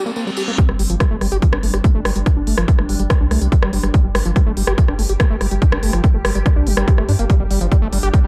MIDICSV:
0, 0, Header, 1, 7, 480
1, 0, Start_track
1, 0, Tempo, 419580
1, 667, Time_signature, 4, 2, 24, 8
1, 9463, End_track
2, 0, Start_track
2, 0, Title_t, "Ambient pad"
2, 0, Program_c, 0, 92
2, 0, Note_on_c, 0, 55, 81
2, 0, Note_on_c, 0, 60, 80
2, 654, Note_off_c, 0, 55, 0
2, 667, Note_on_c, 0, 55, 80
2, 667, Note_on_c, 0, 62, 78
2, 692, Note_off_c, 0, 60, 0
2, 4507, Note_on_c, 0, 67, 84
2, 4532, Note_off_c, 0, 62, 0
2, 8348, Note_on_c, 0, 62, 84
2, 8371, Note_off_c, 0, 67, 0
2, 9463, Note_off_c, 0, 55, 0
2, 9463, Note_off_c, 0, 62, 0
2, 9463, End_track
3, 0, Start_track
3, 0, Title_t, "Acid bass"
3, 0, Program_c, 1, 38
3, 67, Note_on_c, 1, 58, 74
3, 134, Note_off_c, 1, 58, 0
3, 187, Note_on_c, 1, 58, 82
3, 288, Note_off_c, 1, 58, 0
3, 308, Note_on_c, 1, 55, 76
3, 348, Note_off_c, 1, 55, 0
3, 427, Note_on_c, 1, 67, 78
3, 494, Note_off_c, 1, 67, 0
3, 548, Note_on_c, 1, 58, 104
3, 588, Note_off_c, 1, 58, 0
3, 667, Note_on_c, 1, 55, 86
3, 734, Note_off_c, 1, 55, 0
3, 787, Note_on_c, 1, 55, 72
3, 827, Note_off_c, 1, 55, 0
3, 907, Note_on_c, 1, 55, 77
3, 947, Note_off_c, 1, 55, 0
3, 1027, Note_on_c, 1, 53, 76
3, 1094, Note_off_c, 1, 53, 0
3, 1147, Note_on_c, 1, 55, 86
3, 1214, Note_off_c, 1, 55, 0
3, 1267, Note_on_c, 1, 57, 98
3, 1334, Note_off_c, 1, 57, 0
3, 1387, Note_on_c, 1, 55, 78
3, 1454, Note_off_c, 1, 55, 0
3, 1507, Note_on_c, 1, 67, 110
3, 1574, Note_off_c, 1, 67, 0
3, 1627, Note_on_c, 1, 53, 88
3, 1694, Note_off_c, 1, 53, 0
3, 1747, Note_on_c, 1, 62, 73
3, 1814, Note_off_c, 1, 62, 0
3, 1867, Note_on_c, 1, 57, 81
3, 1907, Note_off_c, 1, 57, 0
3, 1987, Note_on_c, 1, 67, 79
3, 2027, Note_off_c, 1, 67, 0
3, 2107, Note_on_c, 1, 57, 82
3, 2174, Note_off_c, 1, 57, 0
3, 2227, Note_on_c, 1, 57, 103
3, 2294, Note_off_c, 1, 57, 0
3, 2347, Note_on_c, 1, 55, 78
3, 2414, Note_off_c, 1, 55, 0
3, 2467, Note_on_c, 1, 55, 77
3, 2507, Note_off_c, 1, 55, 0
3, 2587, Note_on_c, 1, 62, 82
3, 2627, Note_off_c, 1, 62, 0
3, 2707, Note_on_c, 1, 62, 77
3, 2774, Note_off_c, 1, 62, 0
3, 2827, Note_on_c, 1, 57, 77
3, 2927, Note_off_c, 1, 57, 0
3, 2947, Note_on_c, 1, 53, 79
3, 3047, Note_off_c, 1, 53, 0
3, 3066, Note_on_c, 1, 57, 79
3, 3107, Note_off_c, 1, 57, 0
3, 3187, Note_on_c, 1, 57, 81
3, 3227, Note_off_c, 1, 57, 0
3, 3307, Note_on_c, 1, 55, 75
3, 3374, Note_off_c, 1, 55, 0
3, 3427, Note_on_c, 1, 55, 82
3, 3467, Note_off_c, 1, 55, 0
3, 3547, Note_on_c, 1, 62, 85
3, 3587, Note_off_c, 1, 62, 0
3, 3667, Note_on_c, 1, 62, 74
3, 3734, Note_off_c, 1, 62, 0
3, 3787, Note_on_c, 1, 57, 83
3, 3887, Note_off_c, 1, 57, 0
3, 3907, Note_on_c, 1, 55, 79
3, 3974, Note_off_c, 1, 55, 0
3, 4027, Note_on_c, 1, 55, 86
3, 4094, Note_off_c, 1, 55, 0
3, 4147, Note_on_c, 1, 55, 105
3, 4247, Note_off_c, 1, 55, 0
3, 4267, Note_on_c, 1, 55, 80
3, 4334, Note_off_c, 1, 55, 0
3, 4387, Note_on_c, 1, 55, 80
3, 4427, Note_off_c, 1, 55, 0
3, 4507, Note_on_c, 1, 55, 83
3, 4574, Note_off_c, 1, 55, 0
3, 4627, Note_on_c, 1, 55, 76
3, 4667, Note_off_c, 1, 55, 0
3, 4747, Note_on_c, 1, 55, 80
3, 4787, Note_off_c, 1, 55, 0
3, 4867, Note_on_c, 1, 53, 74
3, 4934, Note_off_c, 1, 53, 0
3, 4986, Note_on_c, 1, 55, 83
3, 5054, Note_off_c, 1, 55, 0
3, 5107, Note_on_c, 1, 57, 106
3, 5174, Note_off_c, 1, 57, 0
3, 5227, Note_on_c, 1, 55, 75
3, 5294, Note_off_c, 1, 55, 0
3, 5347, Note_on_c, 1, 67, 101
3, 5414, Note_off_c, 1, 67, 0
3, 5467, Note_on_c, 1, 53, 81
3, 5534, Note_off_c, 1, 53, 0
3, 5587, Note_on_c, 1, 62, 72
3, 5654, Note_off_c, 1, 62, 0
3, 5707, Note_on_c, 1, 57, 80
3, 5747, Note_off_c, 1, 57, 0
3, 5827, Note_on_c, 1, 67, 79
3, 5867, Note_off_c, 1, 67, 0
3, 5948, Note_on_c, 1, 57, 86
3, 6014, Note_off_c, 1, 57, 0
3, 6067, Note_on_c, 1, 57, 99
3, 6134, Note_off_c, 1, 57, 0
3, 6187, Note_on_c, 1, 55, 76
3, 6254, Note_off_c, 1, 55, 0
3, 6307, Note_on_c, 1, 55, 77
3, 6347, Note_off_c, 1, 55, 0
3, 6428, Note_on_c, 1, 62, 81
3, 6468, Note_off_c, 1, 62, 0
3, 6548, Note_on_c, 1, 62, 77
3, 6614, Note_off_c, 1, 62, 0
3, 6668, Note_on_c, 1, 57, 85
3, 6768, Note_off_c, 1, 57, 0
3, 6788, Note_on_c, 1, 53, 76
3, 6888, Note_off_c, 1, 53, 0
3, 6908, Note_on_c, 1, 57, 85
3, 6948, Note_off_c, 1, 57, 0
3, 7028, Note_on_c, 1, 57, 79
3, 7068, Note_off_c, 1, 57, 0
3, 7147, Note_on_c, 1, 55, 81
3, 7214, Note_off_c, 1, 55, 0
3, 7267, Note_on_c, 1, 55, 76
3, 7308, Note_off_c, 1, 55, 0
3, 7387, Note_on_c, 1, 62, 88
3, 7428, Note_off_c, 1, 62, 0
3, 7508, Note_on_c, 1, 62, 76
3, 7627, Note_on_c, 1, 55, 78
3, 7645, Note_off_c, 1, 62, 0
3, 7728, Note_off_c, 1, 55, 0
3, 7748, Note_on_c, 1, 55, 73
3, 7848, Note_off_c, 1, 55, 0
3, 7867, Note_on_c, 1, 67, 81
3, 7934, Note_off_c, 1, 67, 0
3, 7987, Note_on_c, 1, 57, 76
3, 8054, Note_off_c, 1, 57, 0
3, 8107, Note_on_c, 1, 62, 80
3, 8147, Note_off_c, 1, 62, 0
3, 8227, Note_on_c, 1, 58, 79
3, 8294, Note_off_c, 1, 58, 0
3, 8347, Note_on_c, 1, 55, 78
3, 8414, Note_off_c, 1, 55, 0
3, 8467, Note_on_c, 1, 55, 69
3, 8507, Note_off_c, 1, 55, 0
3, 8587, Note_on_c, 1, 55, 73
3, 8687, Note_off_c, 1, 55, 0
3, 8707, Note_on_c, 1, 53, 68
3, 8774, Note_off_c, 1, 53, 0
3, 8827, Note_on_c, 1, 55, 77
3, 8894, Note_off_c, 1, 55, 0
3, 8947, Note_on_c, 1, 57, 91
3, 9014, Note_off_c, 1, 57, 0
3, 9067, Note_on_c, 1, 55, 72
3, 9134, Note_off_c, 1, 55, 0
3, 9187, Note_on_c, 1, 67, 100
3, 9254, Note_off_c, 1, 67, 0
3, 9307, Note_on_c, 1, 55, 82
3, 9374, Note_off_c, 1, 55, 0
3, 9427, Note_on_c, 1, 55, 70
3, 9463, Note_off_c, 1, 55, 0
3, 9463, End_track
4, 0, Start_track
4, 0, Title_t, "Analog synth bass"
4, 0, Program_c, 2, 38
4, 788, Note_on_c, 2, 31, 91
4, 864, Note_off_c, 2, 31, 0
4, 908, Note_on_c, 2, 31, 100
4, 984, Note_off_c, 2, 31, 0
4, 1028, Note_on_c, 2, 31, 87
4, 1104, Note_off_c, 2, 31, 0
4, 1268, Note_on_c, 2, 31, 87
4, 1344, Note_off_c, 2, 31, 0
4, 1388, Note_on_c, 2, 31, 102
4, 1464, Note_off_c, 2, 31, 0
4, 1507, Note_on_c, 2, 31, 96
4, 1584, Note_off_c, 2, 31, 0
4, 1747, Note_on_c, 2, 31, 81
4, 1824, Note_off_c, 2, 31, 0
4, 1867, Note_on_c, 2, 31, 100
4, 1944, Note_off_c, 2, 31, 0
4, 1987, Note_on_c, 2, 31, 93
4, 2064, Note_off_c, 2, 31, 0
4, 2227, Note_on_c, 2, 31, 92
4, 2304, Note_off_c, 2, 31, 0
4, 2347, Note_on_c, 2, 31, 101
4, 2424, Note_off_c, 2, 31, 0
4, 2467, Note_on_c, 2, 31, 89
4, 2544, Note_off_c, 2, 31, 0
4, 2707, Note_on_c, 2, 31, 89
4, 2784, Note_off_c, 2, 31, 0
4, 2827, Note_on_c, 2, 31, 98
4, 2904, Note_off_c, 2, 31, 0
4, 2947, Note_on_c, 2, 31, 89
4, 3024, Note_off_c, 2, 31, 0
4, 3187, Note_on_c, 2, 31, 88
4, 3264, Note_off_c, 2, 31, 0
4, 3307, Note_on_c, 2, 31, 94
4, 3384, Note_off_c, 2, 31, 0
4, 3427, Note_on_c, 2, 31, 96
4, 3504, Note_off_c, 2, 31, 0
4, 3667, Note_on_c, 2, 36, 85
4, 3744, Note_off_c, 2, 36, 0
4, 3787, Note_on_c, 2, 36, 99
4, 3864, Note_off_c, 2, 36, 0
4, 3907, Note_on_c, 2, 36, 96
4, 3984, Note_off_c, 2, 36, 0
4, 4147, Note_on_c, 2, 31, 89
4, 4224, Note_off_c, 2, 31, 0
4, 4267, Note_on_c, 2, 31, 101
4, 4344, Note_off_c, 2, 31, 0
4, 4387, Note_on_c, 2, 31, 89
4, 4464, Note_off_c, 2, 31, 0
4, 4627, Note_on_c, 2, 31, 87
4, 4704, Note_off_c, 2, 31, 0
4, 4747, Note_on_c, 2, 31, 106
4, 4824, Note_off_c, 2, 31, 0
4, 4867, Note_on_c, 2, 31, 90
4, 4944, Note_off_c, 2, 31, 0
4, 5107, Note_on_c, 2, 31, 83
4, 5184, Note_off_c, 2, 31, 0
4, 5227, Note_on_c, 2, 31, 104
4, 5304, Note_off_c, 2, 31, 0
4, 5347, Note_on_c, 2, 31, 97
4, 5424, Note_off_c, 2, 31, 0
4, 5587, Note_on_c, 2, 31, 85
4, 5664, Note_off_c, 2, 31, 0
4, 5707, Note_on_c, 2, 31, 102
4, 5784, Note_off_c, 2, 31, 0
4, 5827, Note_on_c, 2, 31, 92
4, 5904, Note_off_c, 2, 31, 0
4, 6067, Note_on_c, 2, 31, 92
4, 6144, Note_off_c, 2, 31, 0
4, 6187, Note_on_c, 2, 31, 105
4, 6264, Note_off_c, 2, 31, 0
4, 6307, Note_on_c, 2, 31, 93
4, 6384, Note_off_c, 2, 31, 0
4, 6547, Note_on_c, 2, 31, 89
4, 6624, Note_off_c, 2, 31, 0
4, 6667, Note_on_c, 2, 31, 102
4, 6744, Note_off_c, 2, 31, 0
4, 6787, Note_on_c, 2, 31, 94
4, 6864, Note_off_c, 2, 31, 0
4, 7027, Note_on_c, 2, 31, 89
4, 7104, Note_off_c, 2, 31, 0
4, 7147, Note_on_c, 2, 31, 104
4, 7224, Note_off_c, 2, 31, 0
4, 7267, Note_on_c, 2, 31, 98
4, 7344, Note_off_c, 2, 31, 0
4, 7507, Note_on_c, 2, 36, 84
4, 7584, Note_off_c, 2, 36, 0
4, 7627, Note_on_c, 2, 31, 108
4, 7704, Note_off_c, 2, 31, 0
4, 7747, Note_on_c, 2, 31, 92
4, 7824, Note_off_c, 2, 31, 0
4, 7987, Note_on_c, 2, 31, 91
4, 8064, Note_off_c, 2, 31, 0
4, 8108, Note_on_c, 2, 43, 98
4, 8184, Note_off_c, 2, 43, 0
4, 8228, Note_on_c, 2, 31, 91
4, 8304, Note_off_c, 2, 31, 0
4, 8468, Note_on_c, 2, 31, 90
4, 8544, Note_off_c, 2, 31, 0
4, 8588, Note_on_c, 2, 31, 97
4, 8664, Note_off_c, 2, 31, 0
4, 8708, Note_on_c, 2, 31, 84
4, 8784, Note_off_c, 2, 31, 0
4, 8948, Note_on_c, 2, 31, 89
4, 9024, Note_off_c, 2, 31, 0
4, 9068, Note_on_c, 2, 31, 101
4, 9144, Note_off_c, 2, 31, 0
4, 9188, Note_on_c, 2, 31, 96
4, 9264, Note_off_c, 2, 31, 0
4, 9428, Note_on_c, 2, 31, 85
4, 9463, Note_off_c, 2, 31, 0
4, 9463, End_track
5, 0, Start_track
5, 0, Title_t, "Reverse cymbal"
5, 0, Program_c, 3, 119
5, 0, Note_on_c, 3, 60, 72
5, 668, Note_off_c, 3, 60, 0
5, 9463, End_track
6, 0, Start_track
6, 0, Title_t, "Riser"
6, 0, Program_c, 4, 103
6, 8347, Note_on_c, 4, 60, 79
6, 9463, Note_off_c, 4, 60, 0
6, 9463, End_track
7, 0, Start_track
7, 0, Title_t, "Drums"
7, 70, Note_on_c, 9, 54, 37
7, 181, Note_off_c, 9, 54, 0
7, 181, Note_on_c, 9, 54, 50
7, 296, Note_off_c, 9, 54, 0
7, 311, Note_on_c, 9, 54, 37
7, 419, Note_off_c, 9, 54, 0
7, 419, Note_on_c, 9, 54, 81
7, 533, Note_off_c, 9, 54, 0
7, 546, Note_on_c, 9, 54, 34
7, 660, Note_off_c, 9, 54, 0
7, 667, Note_on_c, 9, 36, 122
7, 667, Note_on_c, 9, 42, 63
7, 782, Note_off_c, 9, 36, 0
7, 782, Note_off_c, 9, 42, 0
7, 787, Note_on_c, 9, 37, 37
7, 901, Note_off_c, 9, 37, 0
7, 907, Note_on_c, 9, 46, 103
7, 1021, Note_off_c, 9, 46, 0
7, 1027, Note_on_c, 9, 42, 70
7, 1141, Note_off_c, 9, 42, 0
7, 1147, Note_on_c, 9, 36, 122
7, 1147, Note_on_c, 9, 37, 73
7, 1147, Note_on_c, 9, 42, 65
7, 1261, Note_off_c, 9, 37, 0
7, 1261, Note_off_c, 9, 42, 0
7, 1262, Note_off_c, 9, 36, 0
7, 1387, Note_on_c, 9, 37, 37
7, 1387, Note_on_c, 9, 46, 94
7, 1501, Note_off_c, 9, 37, 0
7, 1501, Note_off_c, 9, 46, 0
7, 1507, Note_on_c, 9, 42, 63
7, 1621, Note_off_c, 9, 42, 0
7, 1627, Note_on_c, 9, 36, 111
7, 1627, Note_on_c, 9, 42, 68
7, 1741, Note_off_c, 9, 42, 0
7, 1742, Note_off_c, 9, 36, 0
7, 1747, Note_on_c, 9, 37, 74
7, 1861, Note_off_c, 9, 37, 0
7, 1867, Note_on_c, 9, 46, 99
7, 1981, Note_off_c, 9, 46, 0
7, 1987, Note_on_c, 9, 37, 38
7, 1987, Note_on_c, 9, 42, 68
7, 2101, Note_off_c, 9, 37, 0
7, 2101, Note_off_c, 9, 42, 0
7, 2107, Note_on_c, 9, 36, 123
7, 2107, Note_on_c, 9, 42, 69
7, 2221, Note_off_c, 9, 42, 0
7, 2222, Note_off_c, 9, 36, 0
7, 2347, Note_on_c, 9, 37, 69
7, 2347, Note_on_c, 9, 46, 93
7, 2461, Note_off_c, 9, 37, 0
7, 2461, Note_off_c, 9, 46, 0
7, 2467, Note_on_c, 9, 42, 73
7, 2581, Note_off_c, 9, 42, 0
7, 2587, Note_on_c, 9, 36, 120
7, 2587, Note_on_c, 9, 37, 37
7, 2587, Note_on_c, 9, 42, 66
7, 2701, Note_off_c, 9, 37, 0
7, 2701, Note_off_c, 9, 42, 0
7, 2702, Note_off_c, 9, 36, 0
7, 2827, Note_on_c, 9, 46, 107
7, 2941, Note_off_c, 9, 46, 0
7, 2947, Note_on_c, 9, 37, 72
7, 2947, Note_on_c, 9, 42, 65
7, 3061, Note_off_c, 9, 37, 0
7, 3061, Note_off_c, 9, 42, 0
7, 3067, Note_on_c, 9, 36, 127
7, 3067, Note_on_c, 9, 42, 66
7, 3181, Note_off_c, 9, 42, 0
7, 3182, Note_off_c, 9, 36, 0
7, 3187, Note_on_c, 9, 37, 35
7, 3301, Note_off_c, 9, 37, 0
7, 3307, Note_on_c, 9, 46, 93
7, 3422, Note_off_c, 9, 46, 0
7, 3427, Note_on_c, 9, 42, 62
7, 3541, Note_off_c, 9, 42, 0
7, 3547, Note_on_c, 9, 36, 115
7, 3547, Note_on_c, 9, 37, 73
7, 3547, Note_on_c, 9, 42, 65
7, 3662, Note_off_c, 9, 36, 0
7, 3662, Note_off_c, 9, 37, 0
7, 3662, Note_off_c, 9, 42, 0
7, 3787, Note_on_c, 9, 37, 37
7, 3787, Note_on_c, 9, 46, 102
7, 3902, Note_off_c, 9, 37, 0
7, 3902, Note_off_c, 9, 46, 0
7, 3907, Note_on_c, 9, 42, 67
7, 4022, Note_off_c, 9, 42, 0
7, 4027, Note_on_c, 9, 36, 127
7, 4027, Note_on_c, 9, 42, 67
7, 4142, Note_off_c, 9, 36, 0
7, 4142, Note_off_c, 9, 42, 0
7, 4147, Note_on_c, 9, 37, 78
7, 4262, Note_off_c, 9, 37, 0
7, 4267, Note_on_c, 9, 46, 96
7, 4381, Note_off_c, 9, 46, 0
7, 4387, Note_on_c, 9, 37, 40
7, 4387, Note_on_c, 9, 42, 69
7, 4502, Note_off_c, 9, 37, 0
7, 4502, Note_off_c, 9, 42, 0
7, 4507, Note_on_c, 9, 36, 125
7, 4507, Note_on_c, 9, 42, 63
7, 4621, Note_off_c, 9, 42, 0
7, 4622, Note_off_c, 9, 36, 0
7, 4747, Note_on_c, 9, 37, 76
7, 4747, Note_on_c, 9, 46, 111
7, 4861, Note_off_c, 9, 37, 0
7, 4861, Note_off_c, 9, 46, 0
7, 4867, Note_on_c, 9, 42, 63
7, 4981, Note_off_c, 9, 42, 0
7, 4987, Note_on_c, 9, 36, 125
7, 4987, Note_on_c, 9, 37, 37
7, 4987, Note_on_c, 9, 42, 65
7, 5101, Note_off_c, 9, 37, 0
7, 5101, Note_off_c, 9, 42, 0
7, 5102, Note_off_c, 9, 36, 0
7, 5227, Note_on_c, 9, 46, 97
7, 5341, Note_off_c, 9, 46, 0
7, 5347, Note_on_c, 9, 37, 70
7, 5347, Note_on_c, 9, 42, 58
7, 5461, Note_off_c, 9, 37, 0
7, 5461, Note_off_c, 9, 42, 0
7, 5467, Note_on_c, 9, 36, 122
7, 5467, Note_on_c, 9, 42, 64
7, 5582, Note_off_c, 9, 36, 0
7, 5582, Note_off_c, 9, 42, 0
7, 5587, Note_on_c, 9, 37, 40
7, 5702, Note_off_c, 9, 37, 0
7, 5707, Note_on_c, 9, 46, 105
7, 5821, Note_off_c, 9, 46, 0
7, 5827, Note_on_c, 9, 42, 66
7, 5941, Note_off_c, 9, 42, 0
7, 5947, Note_on_c, 9, 36, 125
7, 5947, Note_on_c, 9, 37, 81
7, 5947, Note_on_c, 9, 42, 68
7, 6061, Note_off_c, 9, 37, 0
7, 6061, Note_off_c, 9, 42, 0
7, 6062, Note_off_c, 9, 36, 0
7, 6187, Note_on_c, 9, 37, 37
7, 6187, Note_on_c, 9, 46, 97
7, 6302, Note_off_c, 9, 37, 0
7, 6302, Note_off_c, 9, 46, 0
7, 6307, Note_on_c, 9, 42, 66
7, 6422, Note_off_c, 9, 42, 0
7, 6427, Note_on_c, 9, 36, 120
7, 6427, Note_on_c, 9, 42, 61
7, 6541, Note_off_c, 9, 42, 0
7, 6542, Note_off_c, 9, 36, 0
7, 6547, Note_on_c, 9, 37, 83
7, 6662, Note_off_c, 9, 37, 0
7, 6667, Note_on_c, 9, 46, 113
7, 6781, Note_off_c, 9, 46, 0
7, 6787, Note_on_c, 9, 37, 39
7, 6787, Note_on_c, 9, 42, 63
7, 6901, Note_off_c, 9, 37, 0
7, 6901, Note_off_c, 9, 42, 0
7, 6907, Note_on_c, 9, 36, 119
7, 6907, Note_on_c, 9, 42, 59
7, 7021, Note_off_c, 9, 42, 0
7, 7022, Note_off_c, 9, 36, 0
7, 7147, Note_on_c, 9, 37, 79
7, 7147, Note_on_c, 9, 46, 100
7, 7261, Note_off_c, 9, 37, 0
7, 7261, Note_off_c, 9, 46, 0
7, 7267, Note_on_c, 9, 42, 56
7, 7381, Note_off_c, 9, 42, 0
7, 7387, Note_on_c, 9, 36, 126
7, 7387, Note_on_c, 9, 37, 43
7, 7387, Note_on_c, 9, 42, 62
7, 7501, Note_off_c, 9, 37, 0
7, 7501, Note_off_c, 9, 42, 0
7, 7502, Note_off_c, 9, 36, 0
7, 7627, Note_on_c, 9, 46, 104
7, 7741, Note_off_c, 9, 46, 0
7, 7747, Note_on_c, 9, 37, 80
7, 7747, Note_on_c, 9, 42, 64
7, 7861, Note_off_c, 9, 37, 0
7, 7861, Note_off_c, 9, 42, 0
7, 7867, Note_on_c, 9, 36, 126
7, 7867, Note_on_c, 9, 42, 66
7, 7981, Note_off_c, 9, 42, 0
7, 7982, Note_off_c, 9, 36, 0
7, 7987, Note_on_c, 9, 37, 40
7, 8101, Note_off_c, 9, 37, 0
7, 8107, Note_on_c, 9, 46, 94
7, 8221, Note_off_c, 9, 46, 0
7, 8227, Note_on_c, 9, 42, 62
7, 8341, Note_off_c, 9, 42, 0
7, 8347, Note_on_c, 9, 36, 103
7, 8347, Note_on_c, 9, 42, 64
7, 8461, Note_off_c, 9, 42, 0
7, 8462, Note_off_c, 9, 36, 0
7, 8587, Note_on_c, 9, 46, 105
7, 8701, Note_off_c, 9, 46, 0
7, 8707, Note_on_c, 9, 42, 61
7, 8822, Note_off_c, 9, 42, 0
7, 8827, Note_on_c, 9, 36, 105
7, 8827, Note_on_c, 9, 42, 62
7, 8942, Note_off_c, 9, 36, 0
7, 8942, Note_off_c, 9, 42, 0
7, 9067, Note_on_c, 9, 46, 99
7, 9182, Note_off_c, 9, 46, 0
7, 9187, Note_on_c, 9, 42, 61
7, 9302, Note_off_c, 9, 42, 0
7, 9307, Note_on_c, 9, 36, 106
7, 9307, Note_on_c, 9, 42, 63
7, 9422, Note_off_c, 9, 36, 0
7, 9422, Note_off_c, 9, 42, 0
7, 9463, End_track
0, 0, End_of_file